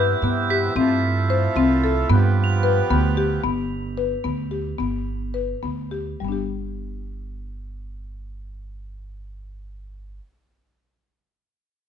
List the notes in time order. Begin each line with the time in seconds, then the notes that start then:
Already playing: G2 C3 B3 E4
0.00 G6
0.22 G2 B3
0.50 G4 B6
0.76 G2 A3 C4 E4 F4
1.30 C5
1.56 C2 C4
1.84 A4
2.10 G2 F3 B3 G4
2.44 F7
2.63 B4
2.90 D2 B3
3.17 G4
3.44 G1 B3
3.98 B4
4.24 D2 B3
4.51 G4
4.78 G1 B3
5.34 B4
5.63 D2 B3
5.91 G4
6.20 G1 G3
6.25 B3 D4
6.32 G4